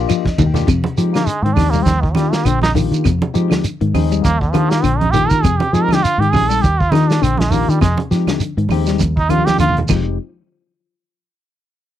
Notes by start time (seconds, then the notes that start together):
Already playing: A#3 D4 F4 G4
0.08 F3 D#5, ride bell, claves, shekere
0.25 kick, snare, high conga
0.38 D#2 D#3, kick, ride bell, low conga, shekere
0.46 G5
0.54 A#3 D4 F4 G4, snare, low conga, shekere
0.67 F2 C3, kick, closed hi-hat, low conga, claves, shekere
0.84 closed hi-hat, high conga
0.98 F3 G#3 C4 D#4 G4, closed hi-hat, shekere
1.14 D3 A#3, snare, closed hi-hat, claves, shekere
1.27 G#3, closed hi-hat, shekere
1.42 G#2 D#3 C4, closed hi-hat
1.54 D#2 G#3 C4 D4 D#4 G4, kick, high conga, claves, shekere
1.58 snare, open hi-hat
1.70 A#3, low conga, shekere
1.75 G3
1.83 D#2 C4, kick, closed hi-hat, high conga, shekere
1.87 snare
2.01 D#3, kick
2.13 D#3 G3 A#3 D4 F4 G4, snare, closed hi-hat, high conga, claves, shekere
2.33 A#3, snare, shekere
2.45 A#1 D3 C4, closed hi-hat, claves, shekere
2.62 D#4, snare, closed hi-hat, high conga
2.75 D#3 A#3 D4 F4 G4, open hi-hat, high conga, low conga, shekere
2.92 D#3, closed hi-hat, shekere
3.04 F2 C3, kick, closed hi-hat, low conga, claves, shekere
3.21 closed hi-hat, high conga
3.34 F3 G#3 C4 D#4 G4, closed hi-hat, shekere
3.50 D3, snare, closed hi-hat, high conga, claves, shekere
3.64 closed hi-hat, shekere
3.81 G#2 D#3, closed hi-hat
3.94 D#2 G#3 C4 D#4 G#4, open hi-hat, high conga, claves, shekere
4.12 G3, closed hi-hat, shekere
4.24 D#2 A#3, kick, closed hi-hat, high conga, shekere
4.40 D3, kick
4.51 D#3 F3 A#3 D4 F4 G4, closed hi-hat, high conga, claves, shekere
4.70 A#3, snare, closed hi-hat, shekere
4.83 A#1 D3 C4, closed hi-hat, claves, shekere
4.98 D#4, closed hi-hat, high conga
5.11 D#3 A#3 D4 F4 G4, high conga, low conga, shekere
5.15 closed hi-hat
5.29 D#3 A#4, kick, closed hi-hat, shekere
5.42 F2 C3 G#4, kick, closed hi-hat, low conga, claves, shekere
5.58 G4, closed hi-hat, high conga
5.73 F3 G#3 C4 D#4 G4 G#4, closed hi-hat, shekere
5.83 A#4
5.89 D3, snare, closed hi-hat, high conga, claves, shekere
5.94 G4
6.03 F4, closed hi-hat, shekere
6.18 G#2 D#3 G4
6.22 closed hi-hat
6.31 A#1 G#3 C4 D#4 G4 G#4, kick, high conga, claves, shekere
6.36 open hi-hat
6.49 G3 A4, shekere
6.62 D#2 G4, kick, closed hi-hat, shekere
6.80 F4, kick
6.92 D#3 A#3 D4 D#4 F4 G4, snare, closed hi-hat, high conga, claves, shekere
7.09 D4, snare, shekere
7.22 A#1 D3 C4, closed hi-hat, claves, shekere
7.37 G#3, snare, closed hi-hat, high conga
7.51 D#3 A#3 D4 F4 G4, open hi-hat, high conga, low conga, shekere
7.69 D#3 G3, closed hi-hat, shekere
7.81 F2 C3 G#3, kick, snare, closed hi-hat, low conga, claves, shekere
7.97 closed hi-hat, high conga
8.11 F3 G#3 C4 D#4 G4, snare, closed hi-hat, shekere
8.27 D3, snare, closed hi-hat, high conga, claves, shekere
8.40 closed hi-hat, shekere
8.57 G#2 D#3, closed hi-hat
8.69 D#2 G#3 C4 D#4 G4, open hi-hat, high conga, claves, shekere
8.86 G3, snare, closed hi-hat, shekere
8.99 D#2, kick, closed hi-hat, high conga, shekere
9.17 D#4, kick
9.29 D#3 A#3 D4 F4 G4, closed hi-hat, high conga, claves, shekere
9.38 high conga
9.45 G4, snare, closed hi-hat, high conga, shekere
9.58 D#2 D3 F4, closed hi-hat, high conga, claves, shekere
9.69 low conga
9.77 closed hi-hat, low conga
9.88 F1 F3 G#3 C4 D#4 G4, kick, crash, low conga, claves, shekere